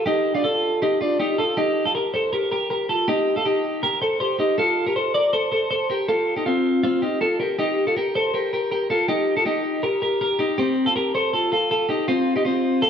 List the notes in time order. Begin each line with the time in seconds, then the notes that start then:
0.06 D#4 G4
0.35 D4 F4
0.44 F4 A4
0.82 D#4 G4
1.01 D4 F4
1.20 D#4 G4
1.38 F4 A4
1.57 D#4 G4
1.85 F4 A4
1.95 G4 A#4
2.14 A4 C5
2.33 G4 A#4
2.51 G4 A#4
2.70 G4 A#4
2.89 F4 A4
3.08 D#4 G4
3.36 F4 A4
3.46 D#4 G4
3.83 G4 A#4
4.02 A4 C5
4.20 G4 C5
4.39 D#4 G4
4.58 F4 A4
4.86 G4 A#4
4.96 A4 C5
5.14 A#4 D5
5.33 A4 C5
5.52 A4 C5
5.71 A4 C5
5.90 G4 A#4
6.09 F4 A4
6.36 D#4 G4
6.46 C4 F4
6.83 C4 F4
7.02 D#4 G4
7.21 F4 A4
7.40 G4 A#4
7.59 D#4 G4
7.87 F4 A4
7.97 G4 A#4
8.15 A4 C5
8.34 G4 A#4
8.53 G4 A#4
8.71 G4 A#4
8.90 F4 A4
9.08 D#4 G4
9.37 F4 A4
9.46 D#4 G4
9.83 G4 A#4
10.02 G4 A#4
10.21 G4 A#4
10.39 D#4 G4
10.58 C4 G4
10.86 F4 A4
10.96 G4 A#4
11.15 A4 C5
11.33 F4 A4
11.52 F4 A4
11.71 F4 A4
11.89 D#4 G4
12.08 C4 F4
12.36 D#4 G4
12.45 C4 F4
12.82 F4 A4